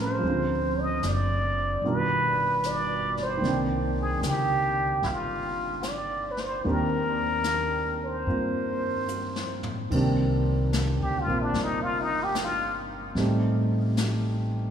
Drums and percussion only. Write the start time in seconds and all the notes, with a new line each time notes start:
0.23 brush sweep
1.03 snare, hi-hat pedal
1.83 brush sweep
2.63 snare, hi-hat pedal
3.17 snare
3.43 brush sweep, snare
4.23 snare, hi-hat pedal
5.03 brush sweep, snare
5.83 snare, hi-hat pedal
6.37 snare
6.64 brush sweep
7.44 snare, hi-hat pedal
8.27 brush sweep
9.08 hi-hat pedal
9.36 snare
9.63 floor tom
9.91 brush sweep, kick, ride
10.73 snare, hi-hat pedal
11.54 brush sweep, snare
12.35 snare, hi-hat pedal
13.16 brush sweep, snare
13.97 snare, hi-hat pedal